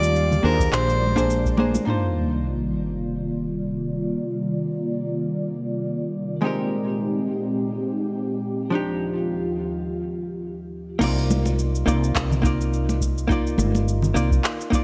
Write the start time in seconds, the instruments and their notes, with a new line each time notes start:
Already playing: fretless electric bass D#2, analog synth pad D#3 F4 G4 D5, hollow-body jazz guitar G3 D#4 F4 D5, soprano saxophone D5
0.03 shaker
0.16 shaker
0.32 low conga, shaker
0.43 fretless electric bass D#2, hollow-body jazz guitar A#3 D4 G#4 C5, soprano saxophone A#4
0.60 kick, shaker
0.72 fretless electric bass A#1, analog synth pad G#3 A#3, soprano saxophone C5, clap, shaker
0.89 shaker
1.02 high conga
1.16 hollow-body jazz guitar A#3 D4 G#4 C5, kick, shaker
1.30 shaker
1.46 kick, shaker
1.57 hollow-body jazz guitar A#3 D4 G#4 C5, high conga
1.75 high conga, shaker
1.85 analog synth pad C3 D#3 G3 A#3 F4 D5, hollow-body jazz guitar A#3 D4 D#4 F4, sub drop
1.90 hollow-body jazz guitar C5
6.42 analog synth pad A#2 G#3 C4 D#4 G4, hollow-body jazz guitar G#3 C4 D#4 G4
6.46 hollow-body jazz guitar A#4
8.70 analog synth pad D#2 F4, hollow-body jazz guitar F3 D4 D#4
8.75 hollow-body jazz guitar G4
10.99 fretless electric bass C2, hollow-body jazz guitar A#3 D#4 F4, kick, crash, shaker
11.04 hollow-body jazz guitar D5
11.18 shaker
11.31 high conga, shaker
11.46 muted conga, shaker
11.59 shaker
11.75 shaker
11.86 fretless electric bass C2, hollow-body jazz guitar A#3 D#4 F4 D5, shaker
12.04 shaker
12.15 fretless electric bass C2, kick, clap, shaker
12.31 low conga, shaker
12.42 hollow-body jazz guitar A#3 D#4 F4, kick, shaker
12.46 hollow-body jazz guitar D5
12.61 shaker
12.74 shaker
12.89 muted conga, shaker
13.01 kick, shaker
13.18 shaker
13.28 hollow-body jazz guitar A#3 D#4 F4, kick, shaker
13.32 hollow-body jazz guitar D5
13.47 shaker
13.58 fretless electric bass G1, high conga, shaker
13.75 muted conga, shaker
13.88 shaker
14.02 low conga, shaker
14.14 fretless electric bass C2, hollow-body jazz guitar A#3 D#4 F4 D5, shaker
14.31 kick, shaker
14.44 clap, shaker
14.61 shaker
14.70 hollow-body jazz guitar A#3 D#4 F4, kick, shaker
14.75 hollow-body jazz guitar D5